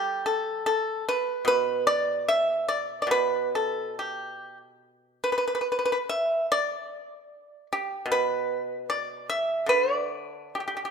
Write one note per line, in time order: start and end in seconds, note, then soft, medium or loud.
0.00 0.65 D3 soft
0.00 1.44 G3 medium
0.00 0.23 G4 medium
0.26 0.63 A4 medium
0.66 1.04 A4 medium
1.08 1.45 B4 medium
1.45 3.06 B2 medium
1.45 1.84 B4 loud
1.87 2.24 D5 loud
2.28 2.66 E5 medium
2.68 3.00 D5 medium
3.02 3.09 D5 medium
3.07 5.62 B2 medium
3.11 3.49 B4 loud
3.55 3.93 A4 medium
3.99 4.57 G4 medium
5.24 5.30 B4 medium
5.32 5.37 B4 medium
5.38 5.44 B4 medium
5.48 5.53 B4 medium
5.55 5.60 B4 medium
5.61 5.67 B4 soft
5.72 5.76 B4 soft
5.79 5.83 B4 soft
5.85 5.90 B4 medium
5.92 5.97 B4 medium
6.09 6.46 E5 medium
6.52 7.66 D5 loud
7.73 8.07 G4 medium
8.06 9.67 B2 medium
8.12 8.85 B4 medium
8.90 9.26 D5 medium
9.29 9.66 E5 medium
9.66 10.91 D3 medium
9.66 9.94 B4 medium
9.94 10.49 D5 medium
10.55 10.59 G4 medium
10.60 10.66 G4 soft
10.68 10.75 G4 soft
10.77 10.83 G4 soft
10.85 10.91 G4 soft